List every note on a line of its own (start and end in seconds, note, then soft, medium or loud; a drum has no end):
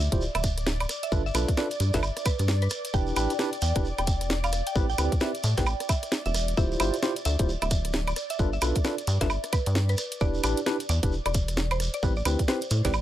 0.00 13.02 D5 medium
0.00 0.20 E5 loud
0.12 0.29 D1 medium
0.12 0.23 E4 medium
0.12 0.23 F4 medium
0.12 0.23 G4 medium
0.12 0.23 C5 medium
0.12 kick loud
0.12 closed hi-hat medium
0.12 shekere soft
0.21 shekere medium
0.35 0.86 D1 medium
0.35 0.62 E5 medium
0.35 cross-stick medium
0.35 closed hi-hat medium
0.35 high woodblock medium
0.35 shekere soft
0.44 kick loud
0.44 closed hi-hat loud
0.44 shekere medium
0.58 cross-stick soft
0.58 closed hi-hat medium
0.58 shekere soft
0.67 snare loud
0.67 shekere medium
0.80 0.93 D5 medium
0.80 closed hi-hat soft
0.80 high woodblock medium
0.80 shekere soft
0.89 cross-stick medium
0.89 closed hi-hat loud
0.89 shekere loud
1.03 1.16 E5 medium
1.03 closed hi-hat medium
1.03 shekere soft
1.12 1.31 G1 loud
1.12 1.22 D4 medium
1.12 1.22 F4 medium
1.12 1.22 A4 medium
1.12 1.22 B4 medium
1.12 kick loud
1.12 shekere medium
1.26 1.47 E5 medium
1.26 shekere soft
1.35 1.46 B1 medium
1.35 1.50 D4 medium
1.35 1.50 F4 medium
1.35 1.50 A4 medium
1.35 1.50 B4 medium
1.35 closed hi-hat loud
1.35 high woodblock medium
1.35 shekere loud
1.48 kick loud
1.48 closed hi-hat medium
1.48 shekere soft
1.57 1.67 D4 medium
1.57 1.67 F4 medium
1.57 1.67 A4 medium
1.57 1.67 B4 medium
1.57 1.79 D5 loud
1.57 snare loud
1.57 shekere medium
1.71 closed hi-hat medium
1.71 shekere soft
1.80 1.91 G2 medium
1.80 closed hi-hat loud
1.80 shekere medium
1.93 2.11 G1 medium
1.93 2.00 D4 medium
1.93 2.00 F4 medium
1.93 2.00 A4 medium
1.93 2.00 B4 medium
1.93 2.15 E5 medium
1.93 kick medium
1.93 snare medium
1.93 closed hi-hat medium
1.93 shekere soft
2.03 high woodblock medium
2.03 shekere medium
2.17 cross-stick medium
2.17 closed hi-hat medium
2.17 shekere soft
2.26 2.48 B4 medium
2.26 kick loud
2.26 closed hi-hat loud
2.26 high woodblock medium
2.26 shekere loud
2.39 2.68 G2 medium
2.39 cross-stick soft
2.39 closed hi-hat medium
2.39 shekere soft
2.48 snare loud
2.48 shekere medium
2.62 2.84 B4 loud
2.62 closed hi-hat soft
2.62 shekere soft
2.70 cross-stick medium
2.70 closed hi-hat medium
2.70 shekere medium
2.85 closed hi-hat medium
2.85 shekere soft
2.94 3.13 E1 loud
2.94 3.14 D4 medium
2.94 3.14 E4 medium
2.94 3.14 G4 medium
2.94 3.14 B4 medium
2.94 3.10 G5 loud
2.94 kick loud
2.94 shekere medium
3.07 shekere soft
3.16 3.27 A1 medium
3.16 3.31 D4 medium
3.16 3.31 E4 medium
3.16 3.31 G4 medium
3.16 3.31 B4 medium
3.16 3.47 G5 medium
3.16 closed hi-hat loud
3.16 high woodblock medium
3.16 shekere loud
3.30 closed hi-hat medium
3.30 shekere soft
3.39 3.49 D4 medium
3.39 3.49 E4 medium
3.39 3.49 G4 medium
3.39 3.49 B4 loud
3.39 snare loud
3.39 shekere medium
3.53 closed hi-hat medium
3.53 shekere soft
3.62 3.73 E2 medium
3.62 3.84 G5 loud
3.62 closed hi-hat medium
3.62 shekere medium
3.75 3.93 E1 medium
3.75 3.87 D4 medium
3.75 3.87 E4 medium
3.75 3.87 G4 medium
3.75 3.87 B4 medium
3.75 kick loud
3.75 closed hi-hat medium
3.75 shekere soft
3.85 shekere medium
3.98 4.62 E1 medium
3.98 4.26 G5 loud
3.98 cross-stick medium
3.98 closed hi-hat medium
3.98 high woodblock medium
3.98 shekere soft
4.07 kick loud
4.07 closed hi-hat loud
4.07 shekere medium
4.21 cross-stick soft
4.21 closed hi-hat medium
4.21 shekere soft
4.30 snare loud
4.30 shekere medium
4.44 4.57 F5 medium
4.44 closed hi-hat soft
4.44 high woodblock medium
4.44 shekere soft
4.53 cross-stick medium
4.53 closed hi-hat medium
4.53 shekere medium
4.67 4.79 G5 medium
4.67 closed hi-hat medium
4.67 shekere soft
4.75 4.95 A1 loud
4.75 4.85 C4 medium
4.75 4.85 E4 medium
4.75 4.85 G4 medium
4.75 4.85 B4 medium
4.75 kick loud
4.75 shekere soft
4.90 5.11 G5 medium
4.90 shekere soft
4.98 5.09 D2 medium
4.98 5.13 C4 medium
4.98 5.13 E4 medium
4.98 5.13 G4 medium
4.98 5.13 B4 medium
4.98 closed hi-hat loud
4.98 high woodblock medium
4.98 shekere loud
5.12 kick loud
5.12 closed hi-hat medium
5.12 shekere soft
5.20 5.31 C4 medium
5.20 5.31 E4 medium
5.20 5.31 G4 medium
5.20 5.31 B4 loud
5.20 5.43 E5 medium
5.20 snare loud
5.20 shekere medium
5.35 closed hi-hat medium
5.35 shekere soft
5.43 5.55 A2 medium
5.43 closed hi-hat medium
5.43 shekere medium
5.57 5.75 A1 medium
5.57 5.64 C4 medium
5.57 5.64 E4 medium
5.57 5.64 G4 medium
5.57 5.64 B4 medium
5.57 5.79 G5 loud
5.57 kick medium
5.57 snare medium
5.57 closed hi-hat medium
5.57 shekere soft
5.66 high woodblock medium
5.66 shekere medium
5.80 cross-stick medium
5.80 closed hi-hat medium
5.80 shekere soft
5.89 6.11 E5 medium
5.89 kick loud
5.89 closed hi-hat loud
5.89 high woodblock medium
5.89 shekere loud
6.03 cross-stick soft
6.03 closed hi-hat medium
6.03 shekere soft
6.12 snare loud
6.12 shekere medium
6.26 6.54 E1 medium
6.26 6.47 E5 loud
6.26 closed hi-hat soft
6.26 shekere soft
6.34 cross-stick medium
6.34 closed hi-hat medium
6.34 shekere loud
6.48 closed hi-hat medium
6.48 shekere soft
6.57 6.76 D1 loud
6.57 6.78 E4 medium
6.57 6.78 F4 medium
6.57 6.78 G4 medium
6.57 6.78 C5 medium
6.57 6.74 E5 loud
6.57 kick loud
6.57 shekere medium
6.72 shekere soft
6.80 6.91 G1 medium
6.80 6.95 E4 medium
6.80 6.95 F4 medium
6.80 6.95 G4 medium
6.80 6.95 C5 medium
6.80 7.10 E5 medium
6.80 closed hi-hat loud
6.80 high woodblock medium
6.80 shekere medium
6.94 closed hi-hat medium
6.94 shekere soft
7.03 7.13 E4 medium
7.03 7.13 F4 medium
7.03 7.13 G4 medium
7.03 7.13 C5 medium
7.03 snare loud
7.03 shekere medium
7.16 closed hi-hat medium
7.16 shekere soft
7.25 7.37 D2 medium
7.25 7.47 E5 medium
7.25 closed hi-hat medium
7.25 shekere medium
7.39 7.56 D1 medium
7.39 7.50 E4 medium
7.39 7.50 F4 medium
7.39 7.50 G4 medium
7.39 7.50 C5 medium
7.39 kick loud
7.39 closed hi-hat medium
7.39 shekere soft
7.49 shekere soft
7.62 8.13 D1 medium
7.62 7.90 E5 loud
7.62 cross-stick medium
7.62 closed hi-hat medium
7.62 high woodblock medium
7.62 shekere soft
7.71 kick loud
7.71 closed hi-hat loud
7.71 shekere loud
7.85 cross-stick soft
7.85 closed hi-hat medium
7.85 shekere soft
7.93 snare loud
7.93 shekere medium
8.07 8.20 D5 medium
8.07 closed hi-hat soft
8.07 high woodblock medium
8.07 shekere soft
8.16 cross-stick medium
8.16 closed hi-hat medium
8.16 shekere loud
8.30 8.43 E5 loud
8.30 closed hi-hat medium
8.30 shekere soft
8.39 8.58 G1 loud
8.39 8.49 D4 medium
8.39 8.49 F4 medium
8.39 8.49 A4 medium
8.39 8.49 B4 loud
8.39 kick loud
8.39 shekere soft
8.53 8.75 E5 loud
8.53 shekere soft
8.62 8.73 B1 medium
8.62 8.77 D4 medium
8.62 8.77 F4 medium
8.62 8.77 A4 medium
8.62 8.77 B4 medium
8.62 closed hi-hat loud
8.62 high woodblock medium
8.62 shekere medium
8.75 kick loud
8.75 closed hi-hat medium
8.75 shekere soft
8.84 8.94 D4 medium
8.84 8.94 F4 medium
8.84 8.94 A4 medium
8.84 8.94 B4 medium
8.84 9.06 D5 medium
8.84 snare loud
8.84 shekere medium
8.98 closed hi-hat medium
8.98 shekere soft
9.07 9.18 G2 medium
9.07 closed hi-hat medium
9.07 shekere medium
9.21 9.38 G1 loud
9.21 9.27 D4 medium
9.21 9.27 F4 medium
9.21 9.27 A4 medium
9.21 9.28 B4 medium
9.21 9.43 E5 loud
9.21 kick medium
9.21 snare medium
9.21 closed hi-hat medium
9.21 shekere soft
9.30 high woodblock medium
9.30 shekere medium
9.44 cross-stick medium
9.44 closed hi-hat medium
9.44 shekere soft
9.53 9.75 B4 loud
9.53 kick loud
9.53 closed hi-hat loud
9.53 high woodblock medium
9.53 shekere medium
9.66 9.95 G2 medium
9.66 cross-stick soft
9.66 closed hi-hat medium
9.66 shekere soft
9.75 snare loud
9.75 shekere medium
9.89 10.11 B4 loud
9.89 closed hi-hat soft
9.89 shekere soft
9.98 cross-stick medium
9.98 closed hi-hat medium
9.98 shekere loud
10.12 closed hi-hat medium
10.12 shekere soft
10.20 10.40 E1 loud
10.20 10.42 D4 medium
10.20 10.42 E4 medium
10.20 10.42 G4 medium
10.20 10.42 B4 medium
10.20 10.37 D5 loud
10.20 kick loud
10.20 shekere soft
10.34 shekere soft
10.44 10.55 A1 medium
10.44 10.59 D4 medium
10.44 10.59 E4 medium
10.44 10.59 G4 medium
10.44 10.59 B4 medium
10.44 10.74 D5 loud
10.44 closed hi-hat loud
10.44 high woodblock medium
10.44 shekere loud
10.57 closed hi-hat medium
10.57 shekere soft
10.66 10.76 D4 medium
10.66 10.76 E4 medium
10.66 10.76 G4 medium
10.66 10.76 B4 medium
10.66 snare loud
10.66 shekere soft
10.80 closed hi-hat medium
10.80 shekere soft
10.89 11.00 E2 medium
10.89 11.11 D5 loud
10.89 closed hi-hat loud
10.89 shekere medium
11.03 11.20 E1 medium
11.03 11.14 D4 medium
11.03 11.14 E4 medium
11.03 11.14 G4 medium
11.03 11.14 B4 medium
11.03 kick loud
11.03 closed hi-hat medium
11.03 shekere soft
11.12 shekere medium
11.26 11.89 E1 medium
11.26 11.53 D5 loud
11.26 cross-stick medium
11.26 closed hi-hat medium
11.26 high woodblock medium
11.26 shekere soft
11.34 kick loud
11.34 closed hi-hat loud
11.34 shekere medium
11.48 cross-stick soft
11.48 closed hi-hat medium
11.48 shekere soft
11.57 snare loud
11.57 shekere medium
11.71 11.84 C5 medium
11.71 closed hi-hat soft
11.71 high woodblock medium
11.71 shekere soft
11.80 cross-stick medium
11.80 closed hi-hat loud
11.80 shekere medium
11.94 12.07 D5 medium
11.94 closed hi-hat medium
11.94 shekere soft
12.03 12.22 A1 loud
12.03 12.13 C4 medium
12.03 12.13 E4 medium
12.03 12.13 G4 medium
12.03 12.13 B4 loud
12.03 kick loud
12.03 shekere soft
12.16 12.38 D5 medium
12.16 shekere soft
12.25 12.36 D2 medium
12.25 12.41 C4 medium
12.25 12.41 E4 medium
12.25 12.41 G4 medium
12.25 12.41 B4 medium
12.25 closed hi-hat loud
12.25 high woodblock medium
12.25 shekere loud
12.39 kick loud
12.39 closed hi-hat medium
12.39 shekere soft
12.48 12.58 C4 medium
12.48 12.58 E4 medium
12.48 12.58 G4 medium
12.48 12.58 B4 loud
12.48 12.70 C5 medium
12.48 snare loud
12.48 shekere medium
12.61 closed hi-hat medium
12.61 shekere soft
12.70 12.82 A2 medium
12.70 closed hi-hat loud
12.70 shekere medium
12.85 13.02 A1 medium
12.85 12.91 C4 medium
12.85 12.91 E4 medium
12.85 12.91 G4 medium
12.85 12.91 B4 medium
12.85 13.02 D5 loud
12.85 kick medium
12.85 snare medium
12.85 closed hi-hat medium
12.85 shekere soft
12.93 high woodblock medium
12.93 shekere soft